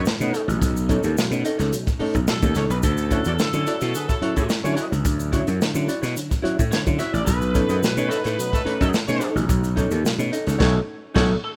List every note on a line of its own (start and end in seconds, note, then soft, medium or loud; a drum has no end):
0.00 2.80 A3 medium
0.00 7.23 C#4 medium
0.00 2.80 D#4 medium
0.05 muted hollow-body jazz guitar stroke soft
0.05 snare loud
0.05 shaker medium
0.20 0.31 B2 loud
0.20 0.44 F#3 medium
0.20 0.33 A3 medium
0.20 0.43 B3 medium
0.20 0.33 C#4 medium
0.20 0.33 D#4 medium
0.20 0.44 D#4 medium
0.20 0.43 B4 medium
0.20 closed hi-hat soft
0.20 shaker medium
0.33 0.50 D#4 medium
0.33 0.48 A4 medium
0.33 0.47 C#5 medium
0.33 closed hi-hat medium
0.33 shaker medium
0.48 0.59 A1 medium
0.48 0.60 B2 medium
0.48 0.60 F#3 medium
0.48 muted hollow-body jazz guitar stroke soft
0.48 closed hi-hat medium
0.48 shaker medium
0.62 0.97 B1 loud
0.62 0.75 B2 medium
0.62 0.75 F#3 medium
0.62 kick loud
0.62 closed hi-hat loud
0.62 shaker medium
0.76 closed hi-hat soft
0.76 shaker medium
0.89 1.03 C#4 medium
0.89 1.10 D#4 medium
0.89 1.03 D#4 medium
0.89 1.10 A4 medium
0.89 1.10 C#5 medium
0.89 kick medium
0.89 closed hi-hat medium
0.89 shaker medium
1.03 1.15 D#2 medium
1.03 closed hi-hat soft
1.03 shaker medium
1.16 1.31 B2 medium
1.16 1.31 F#3 medium
1.16 muted hollow-body jazz guitar stroke soft
1.16 muted slap bass stroke soft
1.16 snare loud
1.16 shaker medium
1.31 1.42 B2 medium
1.31 1.44 A3 medium
1.31 1.44 C#4 medium
1.31 1.44 D#4 medium
1.31 muted hollow-body jazz guitar stroke soft
1.31 closed hi-hat soft
1.31 shaker medium
1.44 1.51 C#4 soft
1.44 1.59 D#4 medium
1.44 1.51 D#4 soft
1.44 1.58 A4 medium
1.44 1.58 D#5 medium
1.44 closed hi-hat medium
1.44 shaker medium
1.58 1.70 C#2 medium
1.58 1.75 D#4 medium
1.58 1.74 A4 medium
1.58 1.74 C#5 medium
1.58 snare soft
1.58 closed hi-hat medium
1.58 shaker medium
1.73 1.86 B2 medium
1.73 1.86 F#3 soft
1.73 closed hi-hat medium
1.73 shaker medium
1.87 muted hollow-body jazz guitar stroke soft
1.87 kick loud
1.87 snare soft
1.87 closed hi-hat soft
1.87 shaker soft
1.99 2.14 A3 medium
1.99 2.14 C#4 medium
1.99 2.20 D#4 medium
1.99 2.14 D#4 medium
1.99 2.15 A4 medium
1.99 2.13 C#5 medium
1.99 muted slap bass stroke soft
1.99 open hi-hat medium
2.14 2.26 B1 medium
2.14 2.20 C#4 soft
2.14 2.20 D#4 soft
2.14 muted hollow-body jazz guitar stroke medium
2.14 kick medium
2.14 closed hi-hat medium
2.14 shaker medium
2.28 2.42 B2 medium
2.28 2.42 F#3 medium
2.28 2.58 A4 medium
2.28 muted hollow-body jazz guitar stroke soft
2.28 snare loud
2.28 shaker medium
2.42 2.54 D#2 medium
2.42 2.55 A3 medium
2.42 2.55 C#4 medium
2.42 2.55 D#4 medium
2.42 kick loud
2.42 closed hi-hat soft
2.42 shaker medium
2.55 2.68 C#2 medium
2.55 2.62 C#4 soft
2.55 2.72 D#4 medium
2.55 2.62 D#4 soft
2.55 2.70 A4 medium
2.55 2.70 C#5 medium
2.55 2.62 C#5 medium
2.55 snare soft
2.55 closed hi-hat medium
2.55 shaker medium
2.70 2.81 B1 medium
2.70 2.76 B4 medium
2.70 muted hollow-body jazz guitar stroke medium
2.70 closed hi-hat soft
2.70 shaker medium
2.83 3.19 D2 loud
2.83 2.97 D3 medium
2.83 7.24 F#3 medium
2.83 7.24 E4 medium
2.83 3.67 A4 loud
2.83 kick loud
2.83 closed hi-hat medium
2.83 shaker medium
2.98 closed hi-hat soft
2.98 shaker medium
3.11 3.25 C#4 medium
3.11 3.32 E4 medium
3.11 3.25 E4 medium
3.11 3.32 F#4 medium
3.11 3.33 C#5 loud
3.11 kick medium
3.11 closed hi-hat medium
3.11 shaker medium
3.25 3.37 E2 loud
3.25 3.34 A3 medium
3.25 3.34 D4 medium
3.25 3.34 F#4 medium
3.25 3.34 D5 loud
3.25 closed hi-hat medium
3.25 shaker medium
3.39 3.52 D3 medium
3.39 muted slap bass stroke soft
3.39 muted hollow-body jazz guitar stroke soft
3.39 snare loud
3.39 shaker medium
3.53 3.65 D3 loud
3.53 3.65 F#3 medium
3.53 3.65 A3 medium
3.53 3.65 C#4 medium
3.53 3.65 E4 medium
3.53 3.65 F#4 medium
3.53 3.65 C#5 medium
3.53 muted hollow-body jazz guitar stroke soft
3.53 closed hi-hat soft
3.53 shaker medium
3.66 3.76 F#3 medium
3.66 3.76 A3 medium
3.66 3.72 C#4 soft
3.66 3.72 E4 soft
3.66 3.81 E4 medium
3.66 3.76 E4 medium
3.66 3.81 F#4 medium
3.66 3.76 A4 medium
3.66 4.47 A4 medium
3.66 3.81 D5 medium
3.66 snare soft
3.66 closed hi-hat medium
3.66 shaker medium
3.81 3.93 B2 medium
3.81 3.97 E4 medium
3.81 3.97 F#4 medium
3.81 3.97 C#5 medium
3.81 snare soft
3.81 closed hi-hat medium
3.81 shaker medium
3.94 4.08 D3 medium
3.94 4.06 B3 medium
3.94 4.06 G#4 medium
3.94 4.06 B4 loud
3.94 closed hi-hat medium
3.94 shaker medium
4.08 4.17 F#3 medium
4.08 4.17 A3 medium
4.08 4.17 E4 medium
4.08 4.17 A4 medium
4.08 muted hollow-body jazz guitar stroke soft
4.08 kick loud
4.08 snare soft
4.08 closed hi-hat soft
4.08 shaker medium
4.21 4.35 F#3 medium
4.21 4.35 C#4 medium
4.21 4.43 E4 medium
4.21 4.35 E4 medium
4.21 4.36 F#4 medium
4.21 4.35 C#5 medium
4.21 muted slap bass stroke medium
4.21 closed hi-hat medium
4.36 4.48 A2 medium
4.36 4.44 F#3 medium
4.36 4.44 A3 medium
4.36 4.42 C#4 soft
4.36 4.44 E4 medium
4.36 4.42 E4 medium
4.36 4.44 A4 medium
4.36 muted hollow-body jazz guitar stroke soft
4.36 kick medium
4.36 closed hi-hat medium
4.36 shaker medium
4.49 muted hollow-body jazz guitar stroke soft
4.49 snare loud
4.49 shaker medium
4.63 4.76 D3 medium
4.63 4.77 F#3 medium
4.63 4.86 A3 loud
4.63 4.86 C#4 loud
4.63 4.77 C#4 medium
4.63 4.77 E4 medium
4.63 4.86 F#4 medium
4.63 4.86 C#5 loud
4.63 closed hi-hat soft
4.63 shaker medium
4.76 4.94 E4 medium
4.76 4.91 F#4 medium
4.76 4.91 C#5 medium
4.76 closed hi-hat medium
4.76 shaker medium
4.92 5.05 C#2 medium
4.92 5.04 D3 medium
4.92 muted hollow-body jazz guitar stroke soft
4.92 closed hi-hat medium
4.92 shaker soft
5.05 5.41 D2 loud
5.05 5.19 D3 medium
5.05 kick loud
5.05 closed hi-hat medium
5.05 shaker medium
5.19 closed hi-hat soft
5.19 shaker medium
5.32 5.47 C#4 medium
5.32 5.53 E4 medium
5.32 5.47 E4 medium
5.32 5.54 F#4 loud
5.32 5.54 C#5 medium
5.32 kick medium
5.32 closed hi-hat medium
5.32 shaker medium
5.47 5.59 F#2 loud
5.47 closed hi-hat medium
5.47 shaker medium
5.60 5.75 D3 medium
5.60 muted hollow-body jazz guitar stroke soft
5.60 muted slap bass stroke soft
5.60 snare loud
5.60 shaker medium
5.74 5.86 D3 medium
5.74 5.88 F#3 medium
5.74 5.88 C#4 medium
5.74 5.88 E4 medium
5.74 muted hollow-body jazz guitar stroke soft
5.74 closed hi-hat soft
5.74 shaker medium
5.87 5.95 C#4 soft
5.87 6.02 E4 medium
5.87 5.95 E4 soft
5.87 6.01 F#4 medium
5.87 6.01 D5 medium
5.87 closed hi-hat medium
5.87 shaker medium
6.02 6.14 B2 medium
6.02 6.19 E4 medium
6.02 6.18 F#4 medium
6.02 6.18 C#5 medium
6.02 snare soft
6.02 closed hi-hat medium
6.02 shaker medium
6.17 6.30 D3 medium
6.17 closed hi-hat medium
6.17 shaker medium
6.30 muted hollow-body jazz guitar stroke soft
6.30 kick medium
6.30 snare soft
6.30 closed hi-hat soft
6.30 shaker medium
6.42 6.57 F#3 medium
6.42 6.58 C#4 medium
6.42 6.64 E4 medium
6.42 6.58 E4 medium
6.42 6.57 F#4 medium
6.42 6.56 C#5 loud
6.42 muted slap bass stroke medium
6.42 closed hi-hat medium
6.57 6.70 A2 medium
6.57 6.64 C#4 soft
6.57 6.64 E4 soft
6.57 muted hollow-body jazz guitar stroke medium
6.57 kick loud
6.57 closed hi-hat medium
6.57 shaker medium
6.71 6.85 D3 medium
6.71 6.79 C#5 medium
6.71 muted hollow-body jazz guitar stroke soft
6.71 snare loud
6.71 shaker medium
6.86 6.98 D3 medium
6.86 6.99 F#3 medium
6.86 6.99 C#4 medium
6.86 6.99 E4 medium
6.86 muted hollow-body jazz guitar stroke soft
6.86 kick medium
6.86 closed hi-hat soft
6.86 shaker medium
6.99 7.06 C#4 soft
6.99 7.20 E4 medium
6.99 7.06 E4 soft
6.99 7.14 F#4 medium
6.99 7.12 C#5 medium
6.99 7.13 E5 loud
6.99 snare soft
6.99 closed hi-hat medium
6.99 shaker medium
7.13 7.25 A1 medium
7.13 7.26 D5 medium
7.13 muted hollow-body jazz guitar stroke medium
7.13 closed hi-hat medium
7.13 shaker medium
7.26 7.63 B1 loud
7.26 7.41 B2 medium
7.26 7.41 F#3 medium
7.26 11.56 A3 medium
7.26 11.56 C#4 medium
7.26 11.56 D#4 medium
7.26 8.08 B4 loud
7.26 kick loud
7.26 closed hi-hat medium
7.26 shaker medium
7.42 closed hi-hat soft
7.42 shaker medium
7.54 7.69 C#4 medium
7.54 7.75 D#4 medium
7.54 7.69 D#4 medium
7.54 7.76 A4 medium
7.54 7.76 C#5 medium
7.54 kick medium
7.54 closed hi-hat medium
7.54 shaker medium
7.69 7.81 F#2 loud
7.69 7.77 A3 medium
7.69 7.77 D#4 medium
7.69 7.77 F#4 medium
7.69 7.77 D#5 loud
7.69 closed hi-hat medium
7.69 shaker medium
7.82 7.96 B2 medium
7.82 7.96 F#3 medium
7.82 muted hollow-body jazz guitar stroke soft
7.82 muted slap bass stroke soft
7.82 snare loud
7.82 shaker medium
7.96 8.08 B2 loud
7.96 8.09 A3 medium
7.96 8.08 A3 medium
7.96 8.08 C#4 medium
7.96 8.09 C#4 medium
7.96 8.09 D#4 medium
7.96 8.08 F#4 medium
7.96 8.08 C#5 medium
7.96 muted hollow-body jazz guitar stroke medium
7.96 closed hi-hat soft
7.96 shaker medium
8.09 8.19 F#3 medium
8.09 8.20 A3 medium
8.09 8.16 C#4 soft
8.09 8.24 D#4 medium
8.09 8.16 D#4 soft
8.09 8.19 D#4 medium
8.09 8.23 A4 medium
8.09 8.20 A4 medium
8.09 8.89 B4 medium
8.09 8.24 D#5 medium
8.09 snare soft
8.09 closed hi-hat medium
8.09 shaker medium
8.24 8.36 A2 medium
8.24 8.40 D#4 medium
8.24 8.40 A4 medium
8.24 8.40 C#5 medium
8.24 snare soft
8.24 closed hi-hat soft
8.24 shaker medium
8.38 8.52 B2 medium
8.38 8.50 F#3 loud
8.38 8.52 F#3 medium
8.38 8.50 B3 medium
8.38 8.50 D#4 medium
8.38 8.50 B4 loud
8.38 closed hi-hat medium
8.38 shaker medium
8.52 8.61 F#3 medium
8.52 8.61 A3 medium
8.52 8.62 D#4 medium
8.52 8.61 A4 loud
8.52 muted hollow-body jazz guitar stroke soft
8.52 kick medium
8.52 snare soft
8.52 closed hi-hat soft
8.52 shaker soft
8.65 8.79 A3 medium
8.65 8.79 C#4 medium
8.65 8.86 D#4 medium
8.65 8.79 D#4 medium
8.65 8.80 A4 medium
8.65 8.79 C#5 loud
8.65 muted slap bass stroke soft
8.65 closed hi-hat medium
8.80 8.92 F#2 medium
8.80 8.89 F#3 medium
8.80 8.89 A3 medium
8.80 8.86 C#4 soft
8.80 8.86 D#4 soft
8.80 8.89 D#4 medium
8.80 8.89 A4 loud
8.80 muted hollow-body jazz guitar stroke soft
8.80 kick loud
8.80 closed hi-hat medium
8.80 shaker medium
8.94 snare loud
8.94 shaker medium
9.08 9.20 B2 loud
9.08 9.20 A3 medium
9.08 9.31 A3 loud
9.08 9.30 C#4 loud
9.08 9.20 C#4 medium
9.08 9.21 D#4 medium
9.08 9.30 F#4 medium
9.08 9.30 C#5 loud
9.08 muted hollow-body jazz guitar stroke soft
9.08 closed hi-hat soft
9.08 shaker medium
9.21 9.42 D#4 medium
9.21 9.35 A4 medium
9.21 9.34 C#5 medium
9.21 closed hi-hat medium
9.21 shaker medium
9.35 9.47 A1 medium
9.35 9.48 B2 medium
9.35 9.48 F#3 medium
9.35 muted hollow-body jazz guitar stroke soft
9.35 closed hi-hat soft
9.35 shaker medium
9.49 9.85 B1 loud
9.49 9.63 B2 medium
9.49 9.63 F#3 medium
9.49 kick loud
9.49 closed hi-hat medium
9.49 shaker medium
9.64 closed hi-hat soft
9.64 shaker medium
9.76 9.90 C#4 medium
9.76 9.97 D#4 medium
9.76 9.90 D#4 medium
9.76 9.98 A4 medium
9.76 9.98 C#5 medium
9.76 kick medium
9.76 closed hi-hat medium
9.76 shaker medium
9.91 10.02 D#2 loud
9.91 closed hi-hat soft
9.91 shaker medium
10.04 10.18 B2 medium
10.04 10.18 F#3 medium
10.04 muted slap bass stroke soft
10.04 muted hollow-body jazz guitar stroke medium
10.04 snare loud
10.04 shaker medium
10.19 10.30 B2 loud
10.19 10.31 A3 medium
10.19 10.31 C#4 medium
10.19 10.31 D#4 medium
10.19 muted hollow-body jazz guitar stroke soft
10.19 closed hi-hat soft
10.19 shaker medium
10.32 10.38 C#4 soft
10.32 10.47 D#4 medium
10.32 10.38 D#4 soft
10.32 10.46 A4 medium
10.32 10.47 D#5 medium
10.32 closed hi-hat medium
10.32 shaker medium
10.47 10.58 C#2 medium
10.47 10.59 D#4 medium
10.47 10.58 A4 medium
10.47 10.58 C#5 medium
10.47 snare soft
10.47 closed hi-hat soft
10.47 shaker medium
10.58 10.79 B1 medium
10.58 10.79 B2 medium
10.58 10.79 F#3 medium
10.58 10.74 A3 loud
10.58 10.74 C#4 medium
10.58 10.80 D#4 loud
10.58 10.73 F#4 loud
10.58 10.79 A4 medium
10.58 10.79 C#5 loud
10.58 10.74 C#5 loud
10.58 kick loud
10.58 snare loud
10.58 crash medium
11.14 11.35 B1 loud
11.14 11.35 B2 loud
11.14 11.35 F#3 loud
11.14 11.30 A3 loud
11.14 11.30 C#4 loud
11.14 11.34 D#4 loud
11.14 11.30 F#4 loud
11.14 11.23 F#4 medium
11.14 11.35 A4 loud
11.14 11.30 C#5 loud
11.14 11.35 C#5 loud
11.14 kick loud
11.14 snare loud
11.14 crash medium
11.44 11.49 A4 medium